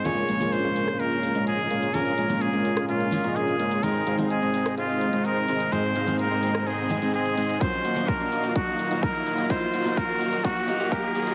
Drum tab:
HH |xxoxxxoxxxoxxxox|xxoxxxoxxxoxxxox|xxoxxxoxxxoxxxox|xxoxxxoxxxoxxxox|
SH |----------------|----------------|----------------|----------------|
SD |-------r--------|-------r--------|-------r--------|-------r--------|
BD |----------------|----------------|----------------|----------------|

HH |xxoxxxoxxxoxxxox|xxoxxxoxxxoxxxox|
SH |x-xxx-xxx-xxx-xx|x-xxx-xxx-xxx-xx|
SD |----------------|----------------|
BD |o---o---o---o---|o---o---o---o---|